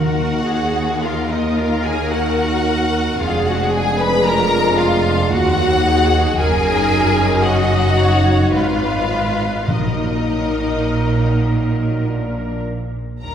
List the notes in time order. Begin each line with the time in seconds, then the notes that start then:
Already playing: D#2 D#3 A#3 D#4 F#4 A#4 F#5
0.47 G#4
1.02 F4 A#4 F5
1.29 D#4 D#5
1.56 F4 F5
1.83 G#4 G#5
2.11 F#4 F#5
3.19 F1 F2 G#3 D4 F4 G#4 F5
3.45 F#4 F#5
3.73 G#4 G#5
3.99 B4 B5
4.25 F4 A#4 A#5
4.78 F4 F5
5.31 D#2 F#3 D#4 F#4 F#5
5.86 G#4
6.38 F#1 F#2 G#4 A#4 G#5
7.43 F#4 D#5 F#5
7.98 C#5
8.53 G#1 G#2 F4 B4 F5
9.68 A#1 A#2 F#3 D#4 A#4 D#5
12.06 F3 D4
13.21 D#2 D#3 G3 C#4 A#4 A#5